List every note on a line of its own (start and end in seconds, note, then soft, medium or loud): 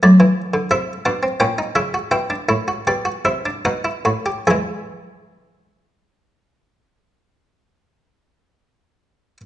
0.03 0.20 F#3 loud
0.03 0.69 A3 medium
0.03 0.69 D5 medium
0.20 0.41 E3 loud
0.54 0.70 D3 loud
0.71 0.92 C3 loud
0.71 0.92 E4 medium
0.71 0.93 E5 medium
1.05 1.28 B2 loud
1.05 1.23 D4 medium
1.05 1.27 F#5 medium
1.23 1.40 C4 medium
1.40 1.63 A#2 loud
1.40 1.58 C#4 loud
1.40 1.63 G5 loud
1.58 1.76 D#4 medium
1.75 1.98 C#3 medium
1.75 1.93 E4 medium
1.75 1.98 E5 medium
1.94 2.12 F#4 medium
2.11 2.35 B2 medium
2.11 2.30 E4 medium
2.11 2.84 G5 medium
2.30 2.49 D4 medium
2.49 2.72 A2 medium
2.49 2.67 E4 medium
2.68 2.86 F#4 medium
2.87 3.11 B2 medium
2.87 3.06 G4 medium
2.87 3.11 D5 medium
3.05 3.24 F#4 medium
3.25 3.50 C3 medium
3.25 3.44 E4 medium
3.25 3.50 E5 medium
3.46 3.65 D4 medium
3.65 3.90 B2 medium
3.65 3.84 D#4 medium
3.65 4.45 F#5 loud
3.85 4.05 E4 medium
4.05 4.31 A2 medium
4.05 4.25 F#4 medium
4.26 4.46 G4 medium
4.47 9.37 E2 medium
4.47 9.41 E3 medium
4.47 9.40 G#3 medium
4.47 9.37 G#4 medium
4.47 9.37 E5 medium